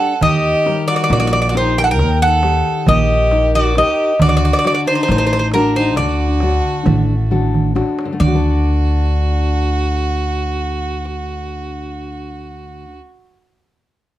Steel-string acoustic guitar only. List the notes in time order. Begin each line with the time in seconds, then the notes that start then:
Already playing: D4 G4 D5
0.22 D#3
0.66 G3 D#4 A#4
1.11 A#3
1.54 D#4 G4 A#4
1.99 D#3
2.43 D#4 G4
2.87 A#3
3.32 D#4 G4 A#4
3.77 D#4 G4 A#4
4.21 D3
4.65 F#4 A4 D5
5.10 A3
5.54 D4 F#4 A4
5.98 D3
6.42 D4 F#4 A4
6.86 A3
7.31 D4 F#4 A4
7.75 D4 F#4 A4
8.05 D3
8.13 A3
8.20 D4
8.27 F#4
8.35 A4